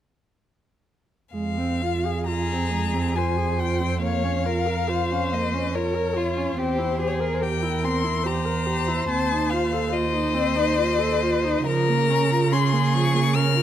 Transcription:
1.34 F2 G#3 F5
1.58 C4
1.82 F4
2.06 G#4
2.27 F4 G#4 A#5
2.52 C4
2.73 G#3
2.94 C4
3.15 F4 C5 G#5
3.38 G#4
3.59 F4 G5
3.81 C4
4.02 A#3 C#5 F5
4.24 C#4
4.46 F4 A#4
4.67 A#4
4.89 F4 C5
5.12 C#4
5.33 A#3 D#5
5.54 C#4
5.75 F4 A#4 C#5
5.95 A#4
6.15 F4
6.37 C#4
6.57 E2 C4 G4 C5
6.78 E4
6.99 G4 G#4
7.07 C#5
7.15 C5
7.20 A#4
7.25 A#4
7.34 C5
7.40 G4 A#4 G5
7.63 E4
7.84 C4 C6
8.04 E4
8.23 G4 C5 A#5
8.45 A#4
8.66 G4
8.88 E4
9.09 D#2 C4 A5
9.32 D#4
9.50 F4 F5
9.73 A4
9.92 F4 C5 D#5
10.13 D#4
10.34 C4
10.56 D#4
10.77 F4
10.99 A4
11.22 F4
11.45 D#4
11.67 C#3 F3 A#4 A#5
11.89 A#3
12.10 C#4
12.31 F4
12.52 C#4 G#4 C6
12.73 A#3
12.94 F3 C#6
13.15 A#3
13.34 C#4 A#4 F6
13.55 F4

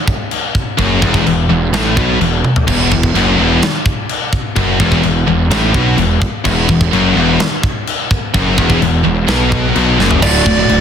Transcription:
0.08 kick
0.31 china
0.55 kick
0.78 F#1 F#2, kick, china
1.02 E1 E2, kick
1.14 kick
1.26 E1 E2, china
1.49 E1 E2
1.72 A1 A2, snare, china
1.97 B1 B2, kick
2.20 E1 E2, china
2.45 high tom
2.56 floor tom
2.67 E1 E2, kick, crash, china
2.92 E1 E2, kick
3.03 kick
3.14 F#1 F#2, china
3.38 E1 E2
3.62 snare, china
3.86 kick
4.09 china
4.33 kick
4.56 F#1 F#2, kick, china
4.80 E1 E2, kick
4.92 kick
5.03 E1 E2, china
5.27 E1 E2
5.50 A1 A2, snare, china
5.74 B1 B2, kick
5.97 E1 E2, china
6.22 kick
6.45 E1 E2, kick, crash, china
6.69 E1 E2, kick
6.81 kick
6.93 F#1 F#2, china
7.16 E1 E2
7.40 snare, china
7.63 kick
7.87 china
8.11 kick
8.34 F#1 F#2, kick, china
8.58 E1 E2, kick
8.70 kick
8.81 E1 E2, china
9.04 E1 E2
9.28 B1 B2, snare, china
9.52 kick
9.75 B1 B2, china
9.99 F#1 F#2, snare
10.11 floor tom
10.22 D1 D2 A2 D3 F#4 D5, kick, crash, china
10.46 D1 D2 A2, kick
10.58 D2 A2 F#4 D5
10.69 D1 D2 A2, china

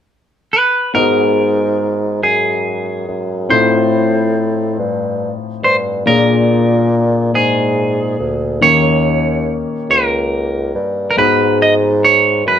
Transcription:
0.53 B4
0.94 G#2 B3 D#4 F#4 G#4 A#4 D#5
2.23 F#2 G#4
3.08 F#2
3.49 A2 C4 D#4 F4 A4 C5 D#5
4.79 G2
5.63 G2 C5
6.06 A#2 A#3 D4 F4 G#4 A#4 C#5
6.14 D5
7.34 G#2 G#4
8.19 D2
8.61 D#2 D#3 A#3 C#4 D#4 G4 C#5
9.89 C#2 A#4
10.75 G2
11.11 A#4
11.16 G#2 G#3 B3 D#4 F#4 B4
11.62 D#5
12.05 C#5
12.46 F#2 B4

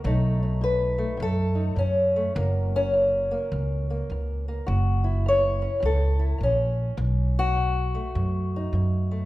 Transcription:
0.04 B1 B2 F#3 A3 D#4 A4
0.43 D#4
0.61 B2 B4
0.98 A3
1.17 F#2 B2
1.22 A4
1.55 D#4
1.76 F#2 B2 C#4
2.16 A3
2.35 F#1 F#2 F#3 A#3
2.76 C#4
2.94 F#2
3.31 A#3
3.52 C#2 F#2
3.90 A#3
4.10 C#2 F#2
4.48 A#3
4.67 F#1 F#2 F#4
5.04 E4
5.26 F#2 C#5
5.62 C#4
5.80 C#2 F#2
5.85 A4
6.19 E4
6.38 A#1 F#2
6.43 C#4
6.97 B1 B2
7.39 F#4
7.56 B2
7.95 A3
8.15 F#2 B2
8.56 D#4
8.73 F#2 B2
9.11 A3

